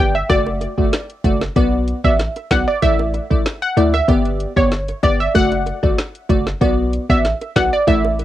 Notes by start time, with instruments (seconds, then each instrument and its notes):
Already playing: synth stab B3, downlifter
0.00 808-style bass G1, synth stab G4 D5, synth pluck G5
0.15 synth pluck E5
0.29 808-style bass F#1, synth stab A3 F#4 D5, synth pluck D5, kick, closed hi-hat, high bongo
0.46 high bongo
0.61 closed hi-hat, high bongo
0.78 808-style bass G1, synth stab A3 F#4 D5, kick
0.93 snare, closed hi-hat
1.10 closed hi-hat
1.24 808-style bass F#1, synth stab A3 F#4 D5, kick, closed hi-hat, low bongo
1.41 snare, high bongo
1.56 808-style bass B1, synth stab B3 F#4 D5, kick, closed hi-hat, high bongo
1.88 closed hi-hat
2.04 808-style bass A1, synth stab B3 F#4 D5, synth pluck E5, kick
2.19 snare, closed hi-hat
2.36 closed hi-hat, high bongo
2.51 808-style bass B1, synth stab B3 F#4 D5, synth pluck F#5, kick, snare, closed hi-hat, low bongo
2.68 synth pluck D5
2.82 808-style bass A1, synth stab A3 E4 D5, synth pluck E5, kick, closed hi-hat, high bongo
2.99 high bongo
3.14 closed hi-hat, high bongo
3.30 808-style bass A1, synth stab A3 E4 D5, kick
3.46 snare, closed hi-hat
3.62 synth pluck F#5, closed hi-hat
3.77 808-style bass D2, synth stab A3 E4 D5, closed hi-hat, low bongo
3.94 synth pluck E5, high bongo
4.08 808-style bass G1, synth stab B3 G4 D5, kick, closed hi-hat, high bongo
4.26 closed hi-hat
4.40 closed hi-hat
4.57 808-style bass G1, synth stab B3 G4 D5, synth pluck C#5, kick
4.72 snare, closed hi-hat
4.89 closed hi-hat, high bongo
5.03 808-style bass G1, synth stab B3 G4 D5, synth pluck D5, kick, closed hi-hat, low bongo
5.20 synth pluck E5
5.35 808-style bass F#1, synth stab A3 F#4 D5, synth pluck F#5, kick, closed hi-hat, high bongo
5.52 closed hi-hat, high bongo
5.66 closed hi-hat, high bongo
5.83 808-style bass G1, synth stab A3 F#4 D5, kick
5.99 snare, closed hi-hat
6.15 closed hi-hat
6.29 808-style bass F#1, synth stab A3 F#4 D5, kick, closed hi-hat, low bongo
6.47 snare, high bongo
6.61 808-style bass B1, synth stab B3 F#4 D5, kick, closed hi-hat, high bongo
6.93 closed hi-hat
7.09 808-style bass A1, synth stab B3 F#4 D5, synth pluck E5, kick
7.25 snare, closed hi-hat
7.41 closed hi-hat, high bongo
7.56 808-style bass B1, synth stab B3 F#4 D5, synth pluck F#5, kick, snare, closed hi-hat, low bongo
7.73 synth pluck D5
7.87 808-style bass A1, synth stab A3 E4 D5, synth pluck E5, kick, closed hi-hat, high bongo
8.05 high bongo
8.19 closed hi-hat, high bongo